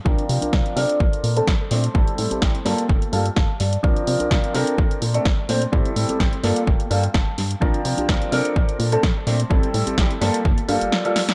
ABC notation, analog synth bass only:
X:1
M:4/4
L:1/16
Q:"Swing 16ths" 1/4=127
K:Cmix
V:1 name="Analog synth bass" clef=bass
C,, z C, C,, C,, z C, z B,,, z B,, z B,,, z B,, z | A,,, z A,, A,,, A,,, z G,, z G,,, z G,, z G,,, z G,, z | C,, z C, C,, C,, z C, z B,,, z B,, z B,,, z B,, z | A,,, z A,, A,,, A,,, z G,, z G,,, z G,, z G,,, z G,, z |
C,, z C, C,, C,, z C, z B,,, z B,, z B,,, z B,, z | A,,, z A,, A,,, A,,, z G,, z G,,, z G,, G,,, z4 |]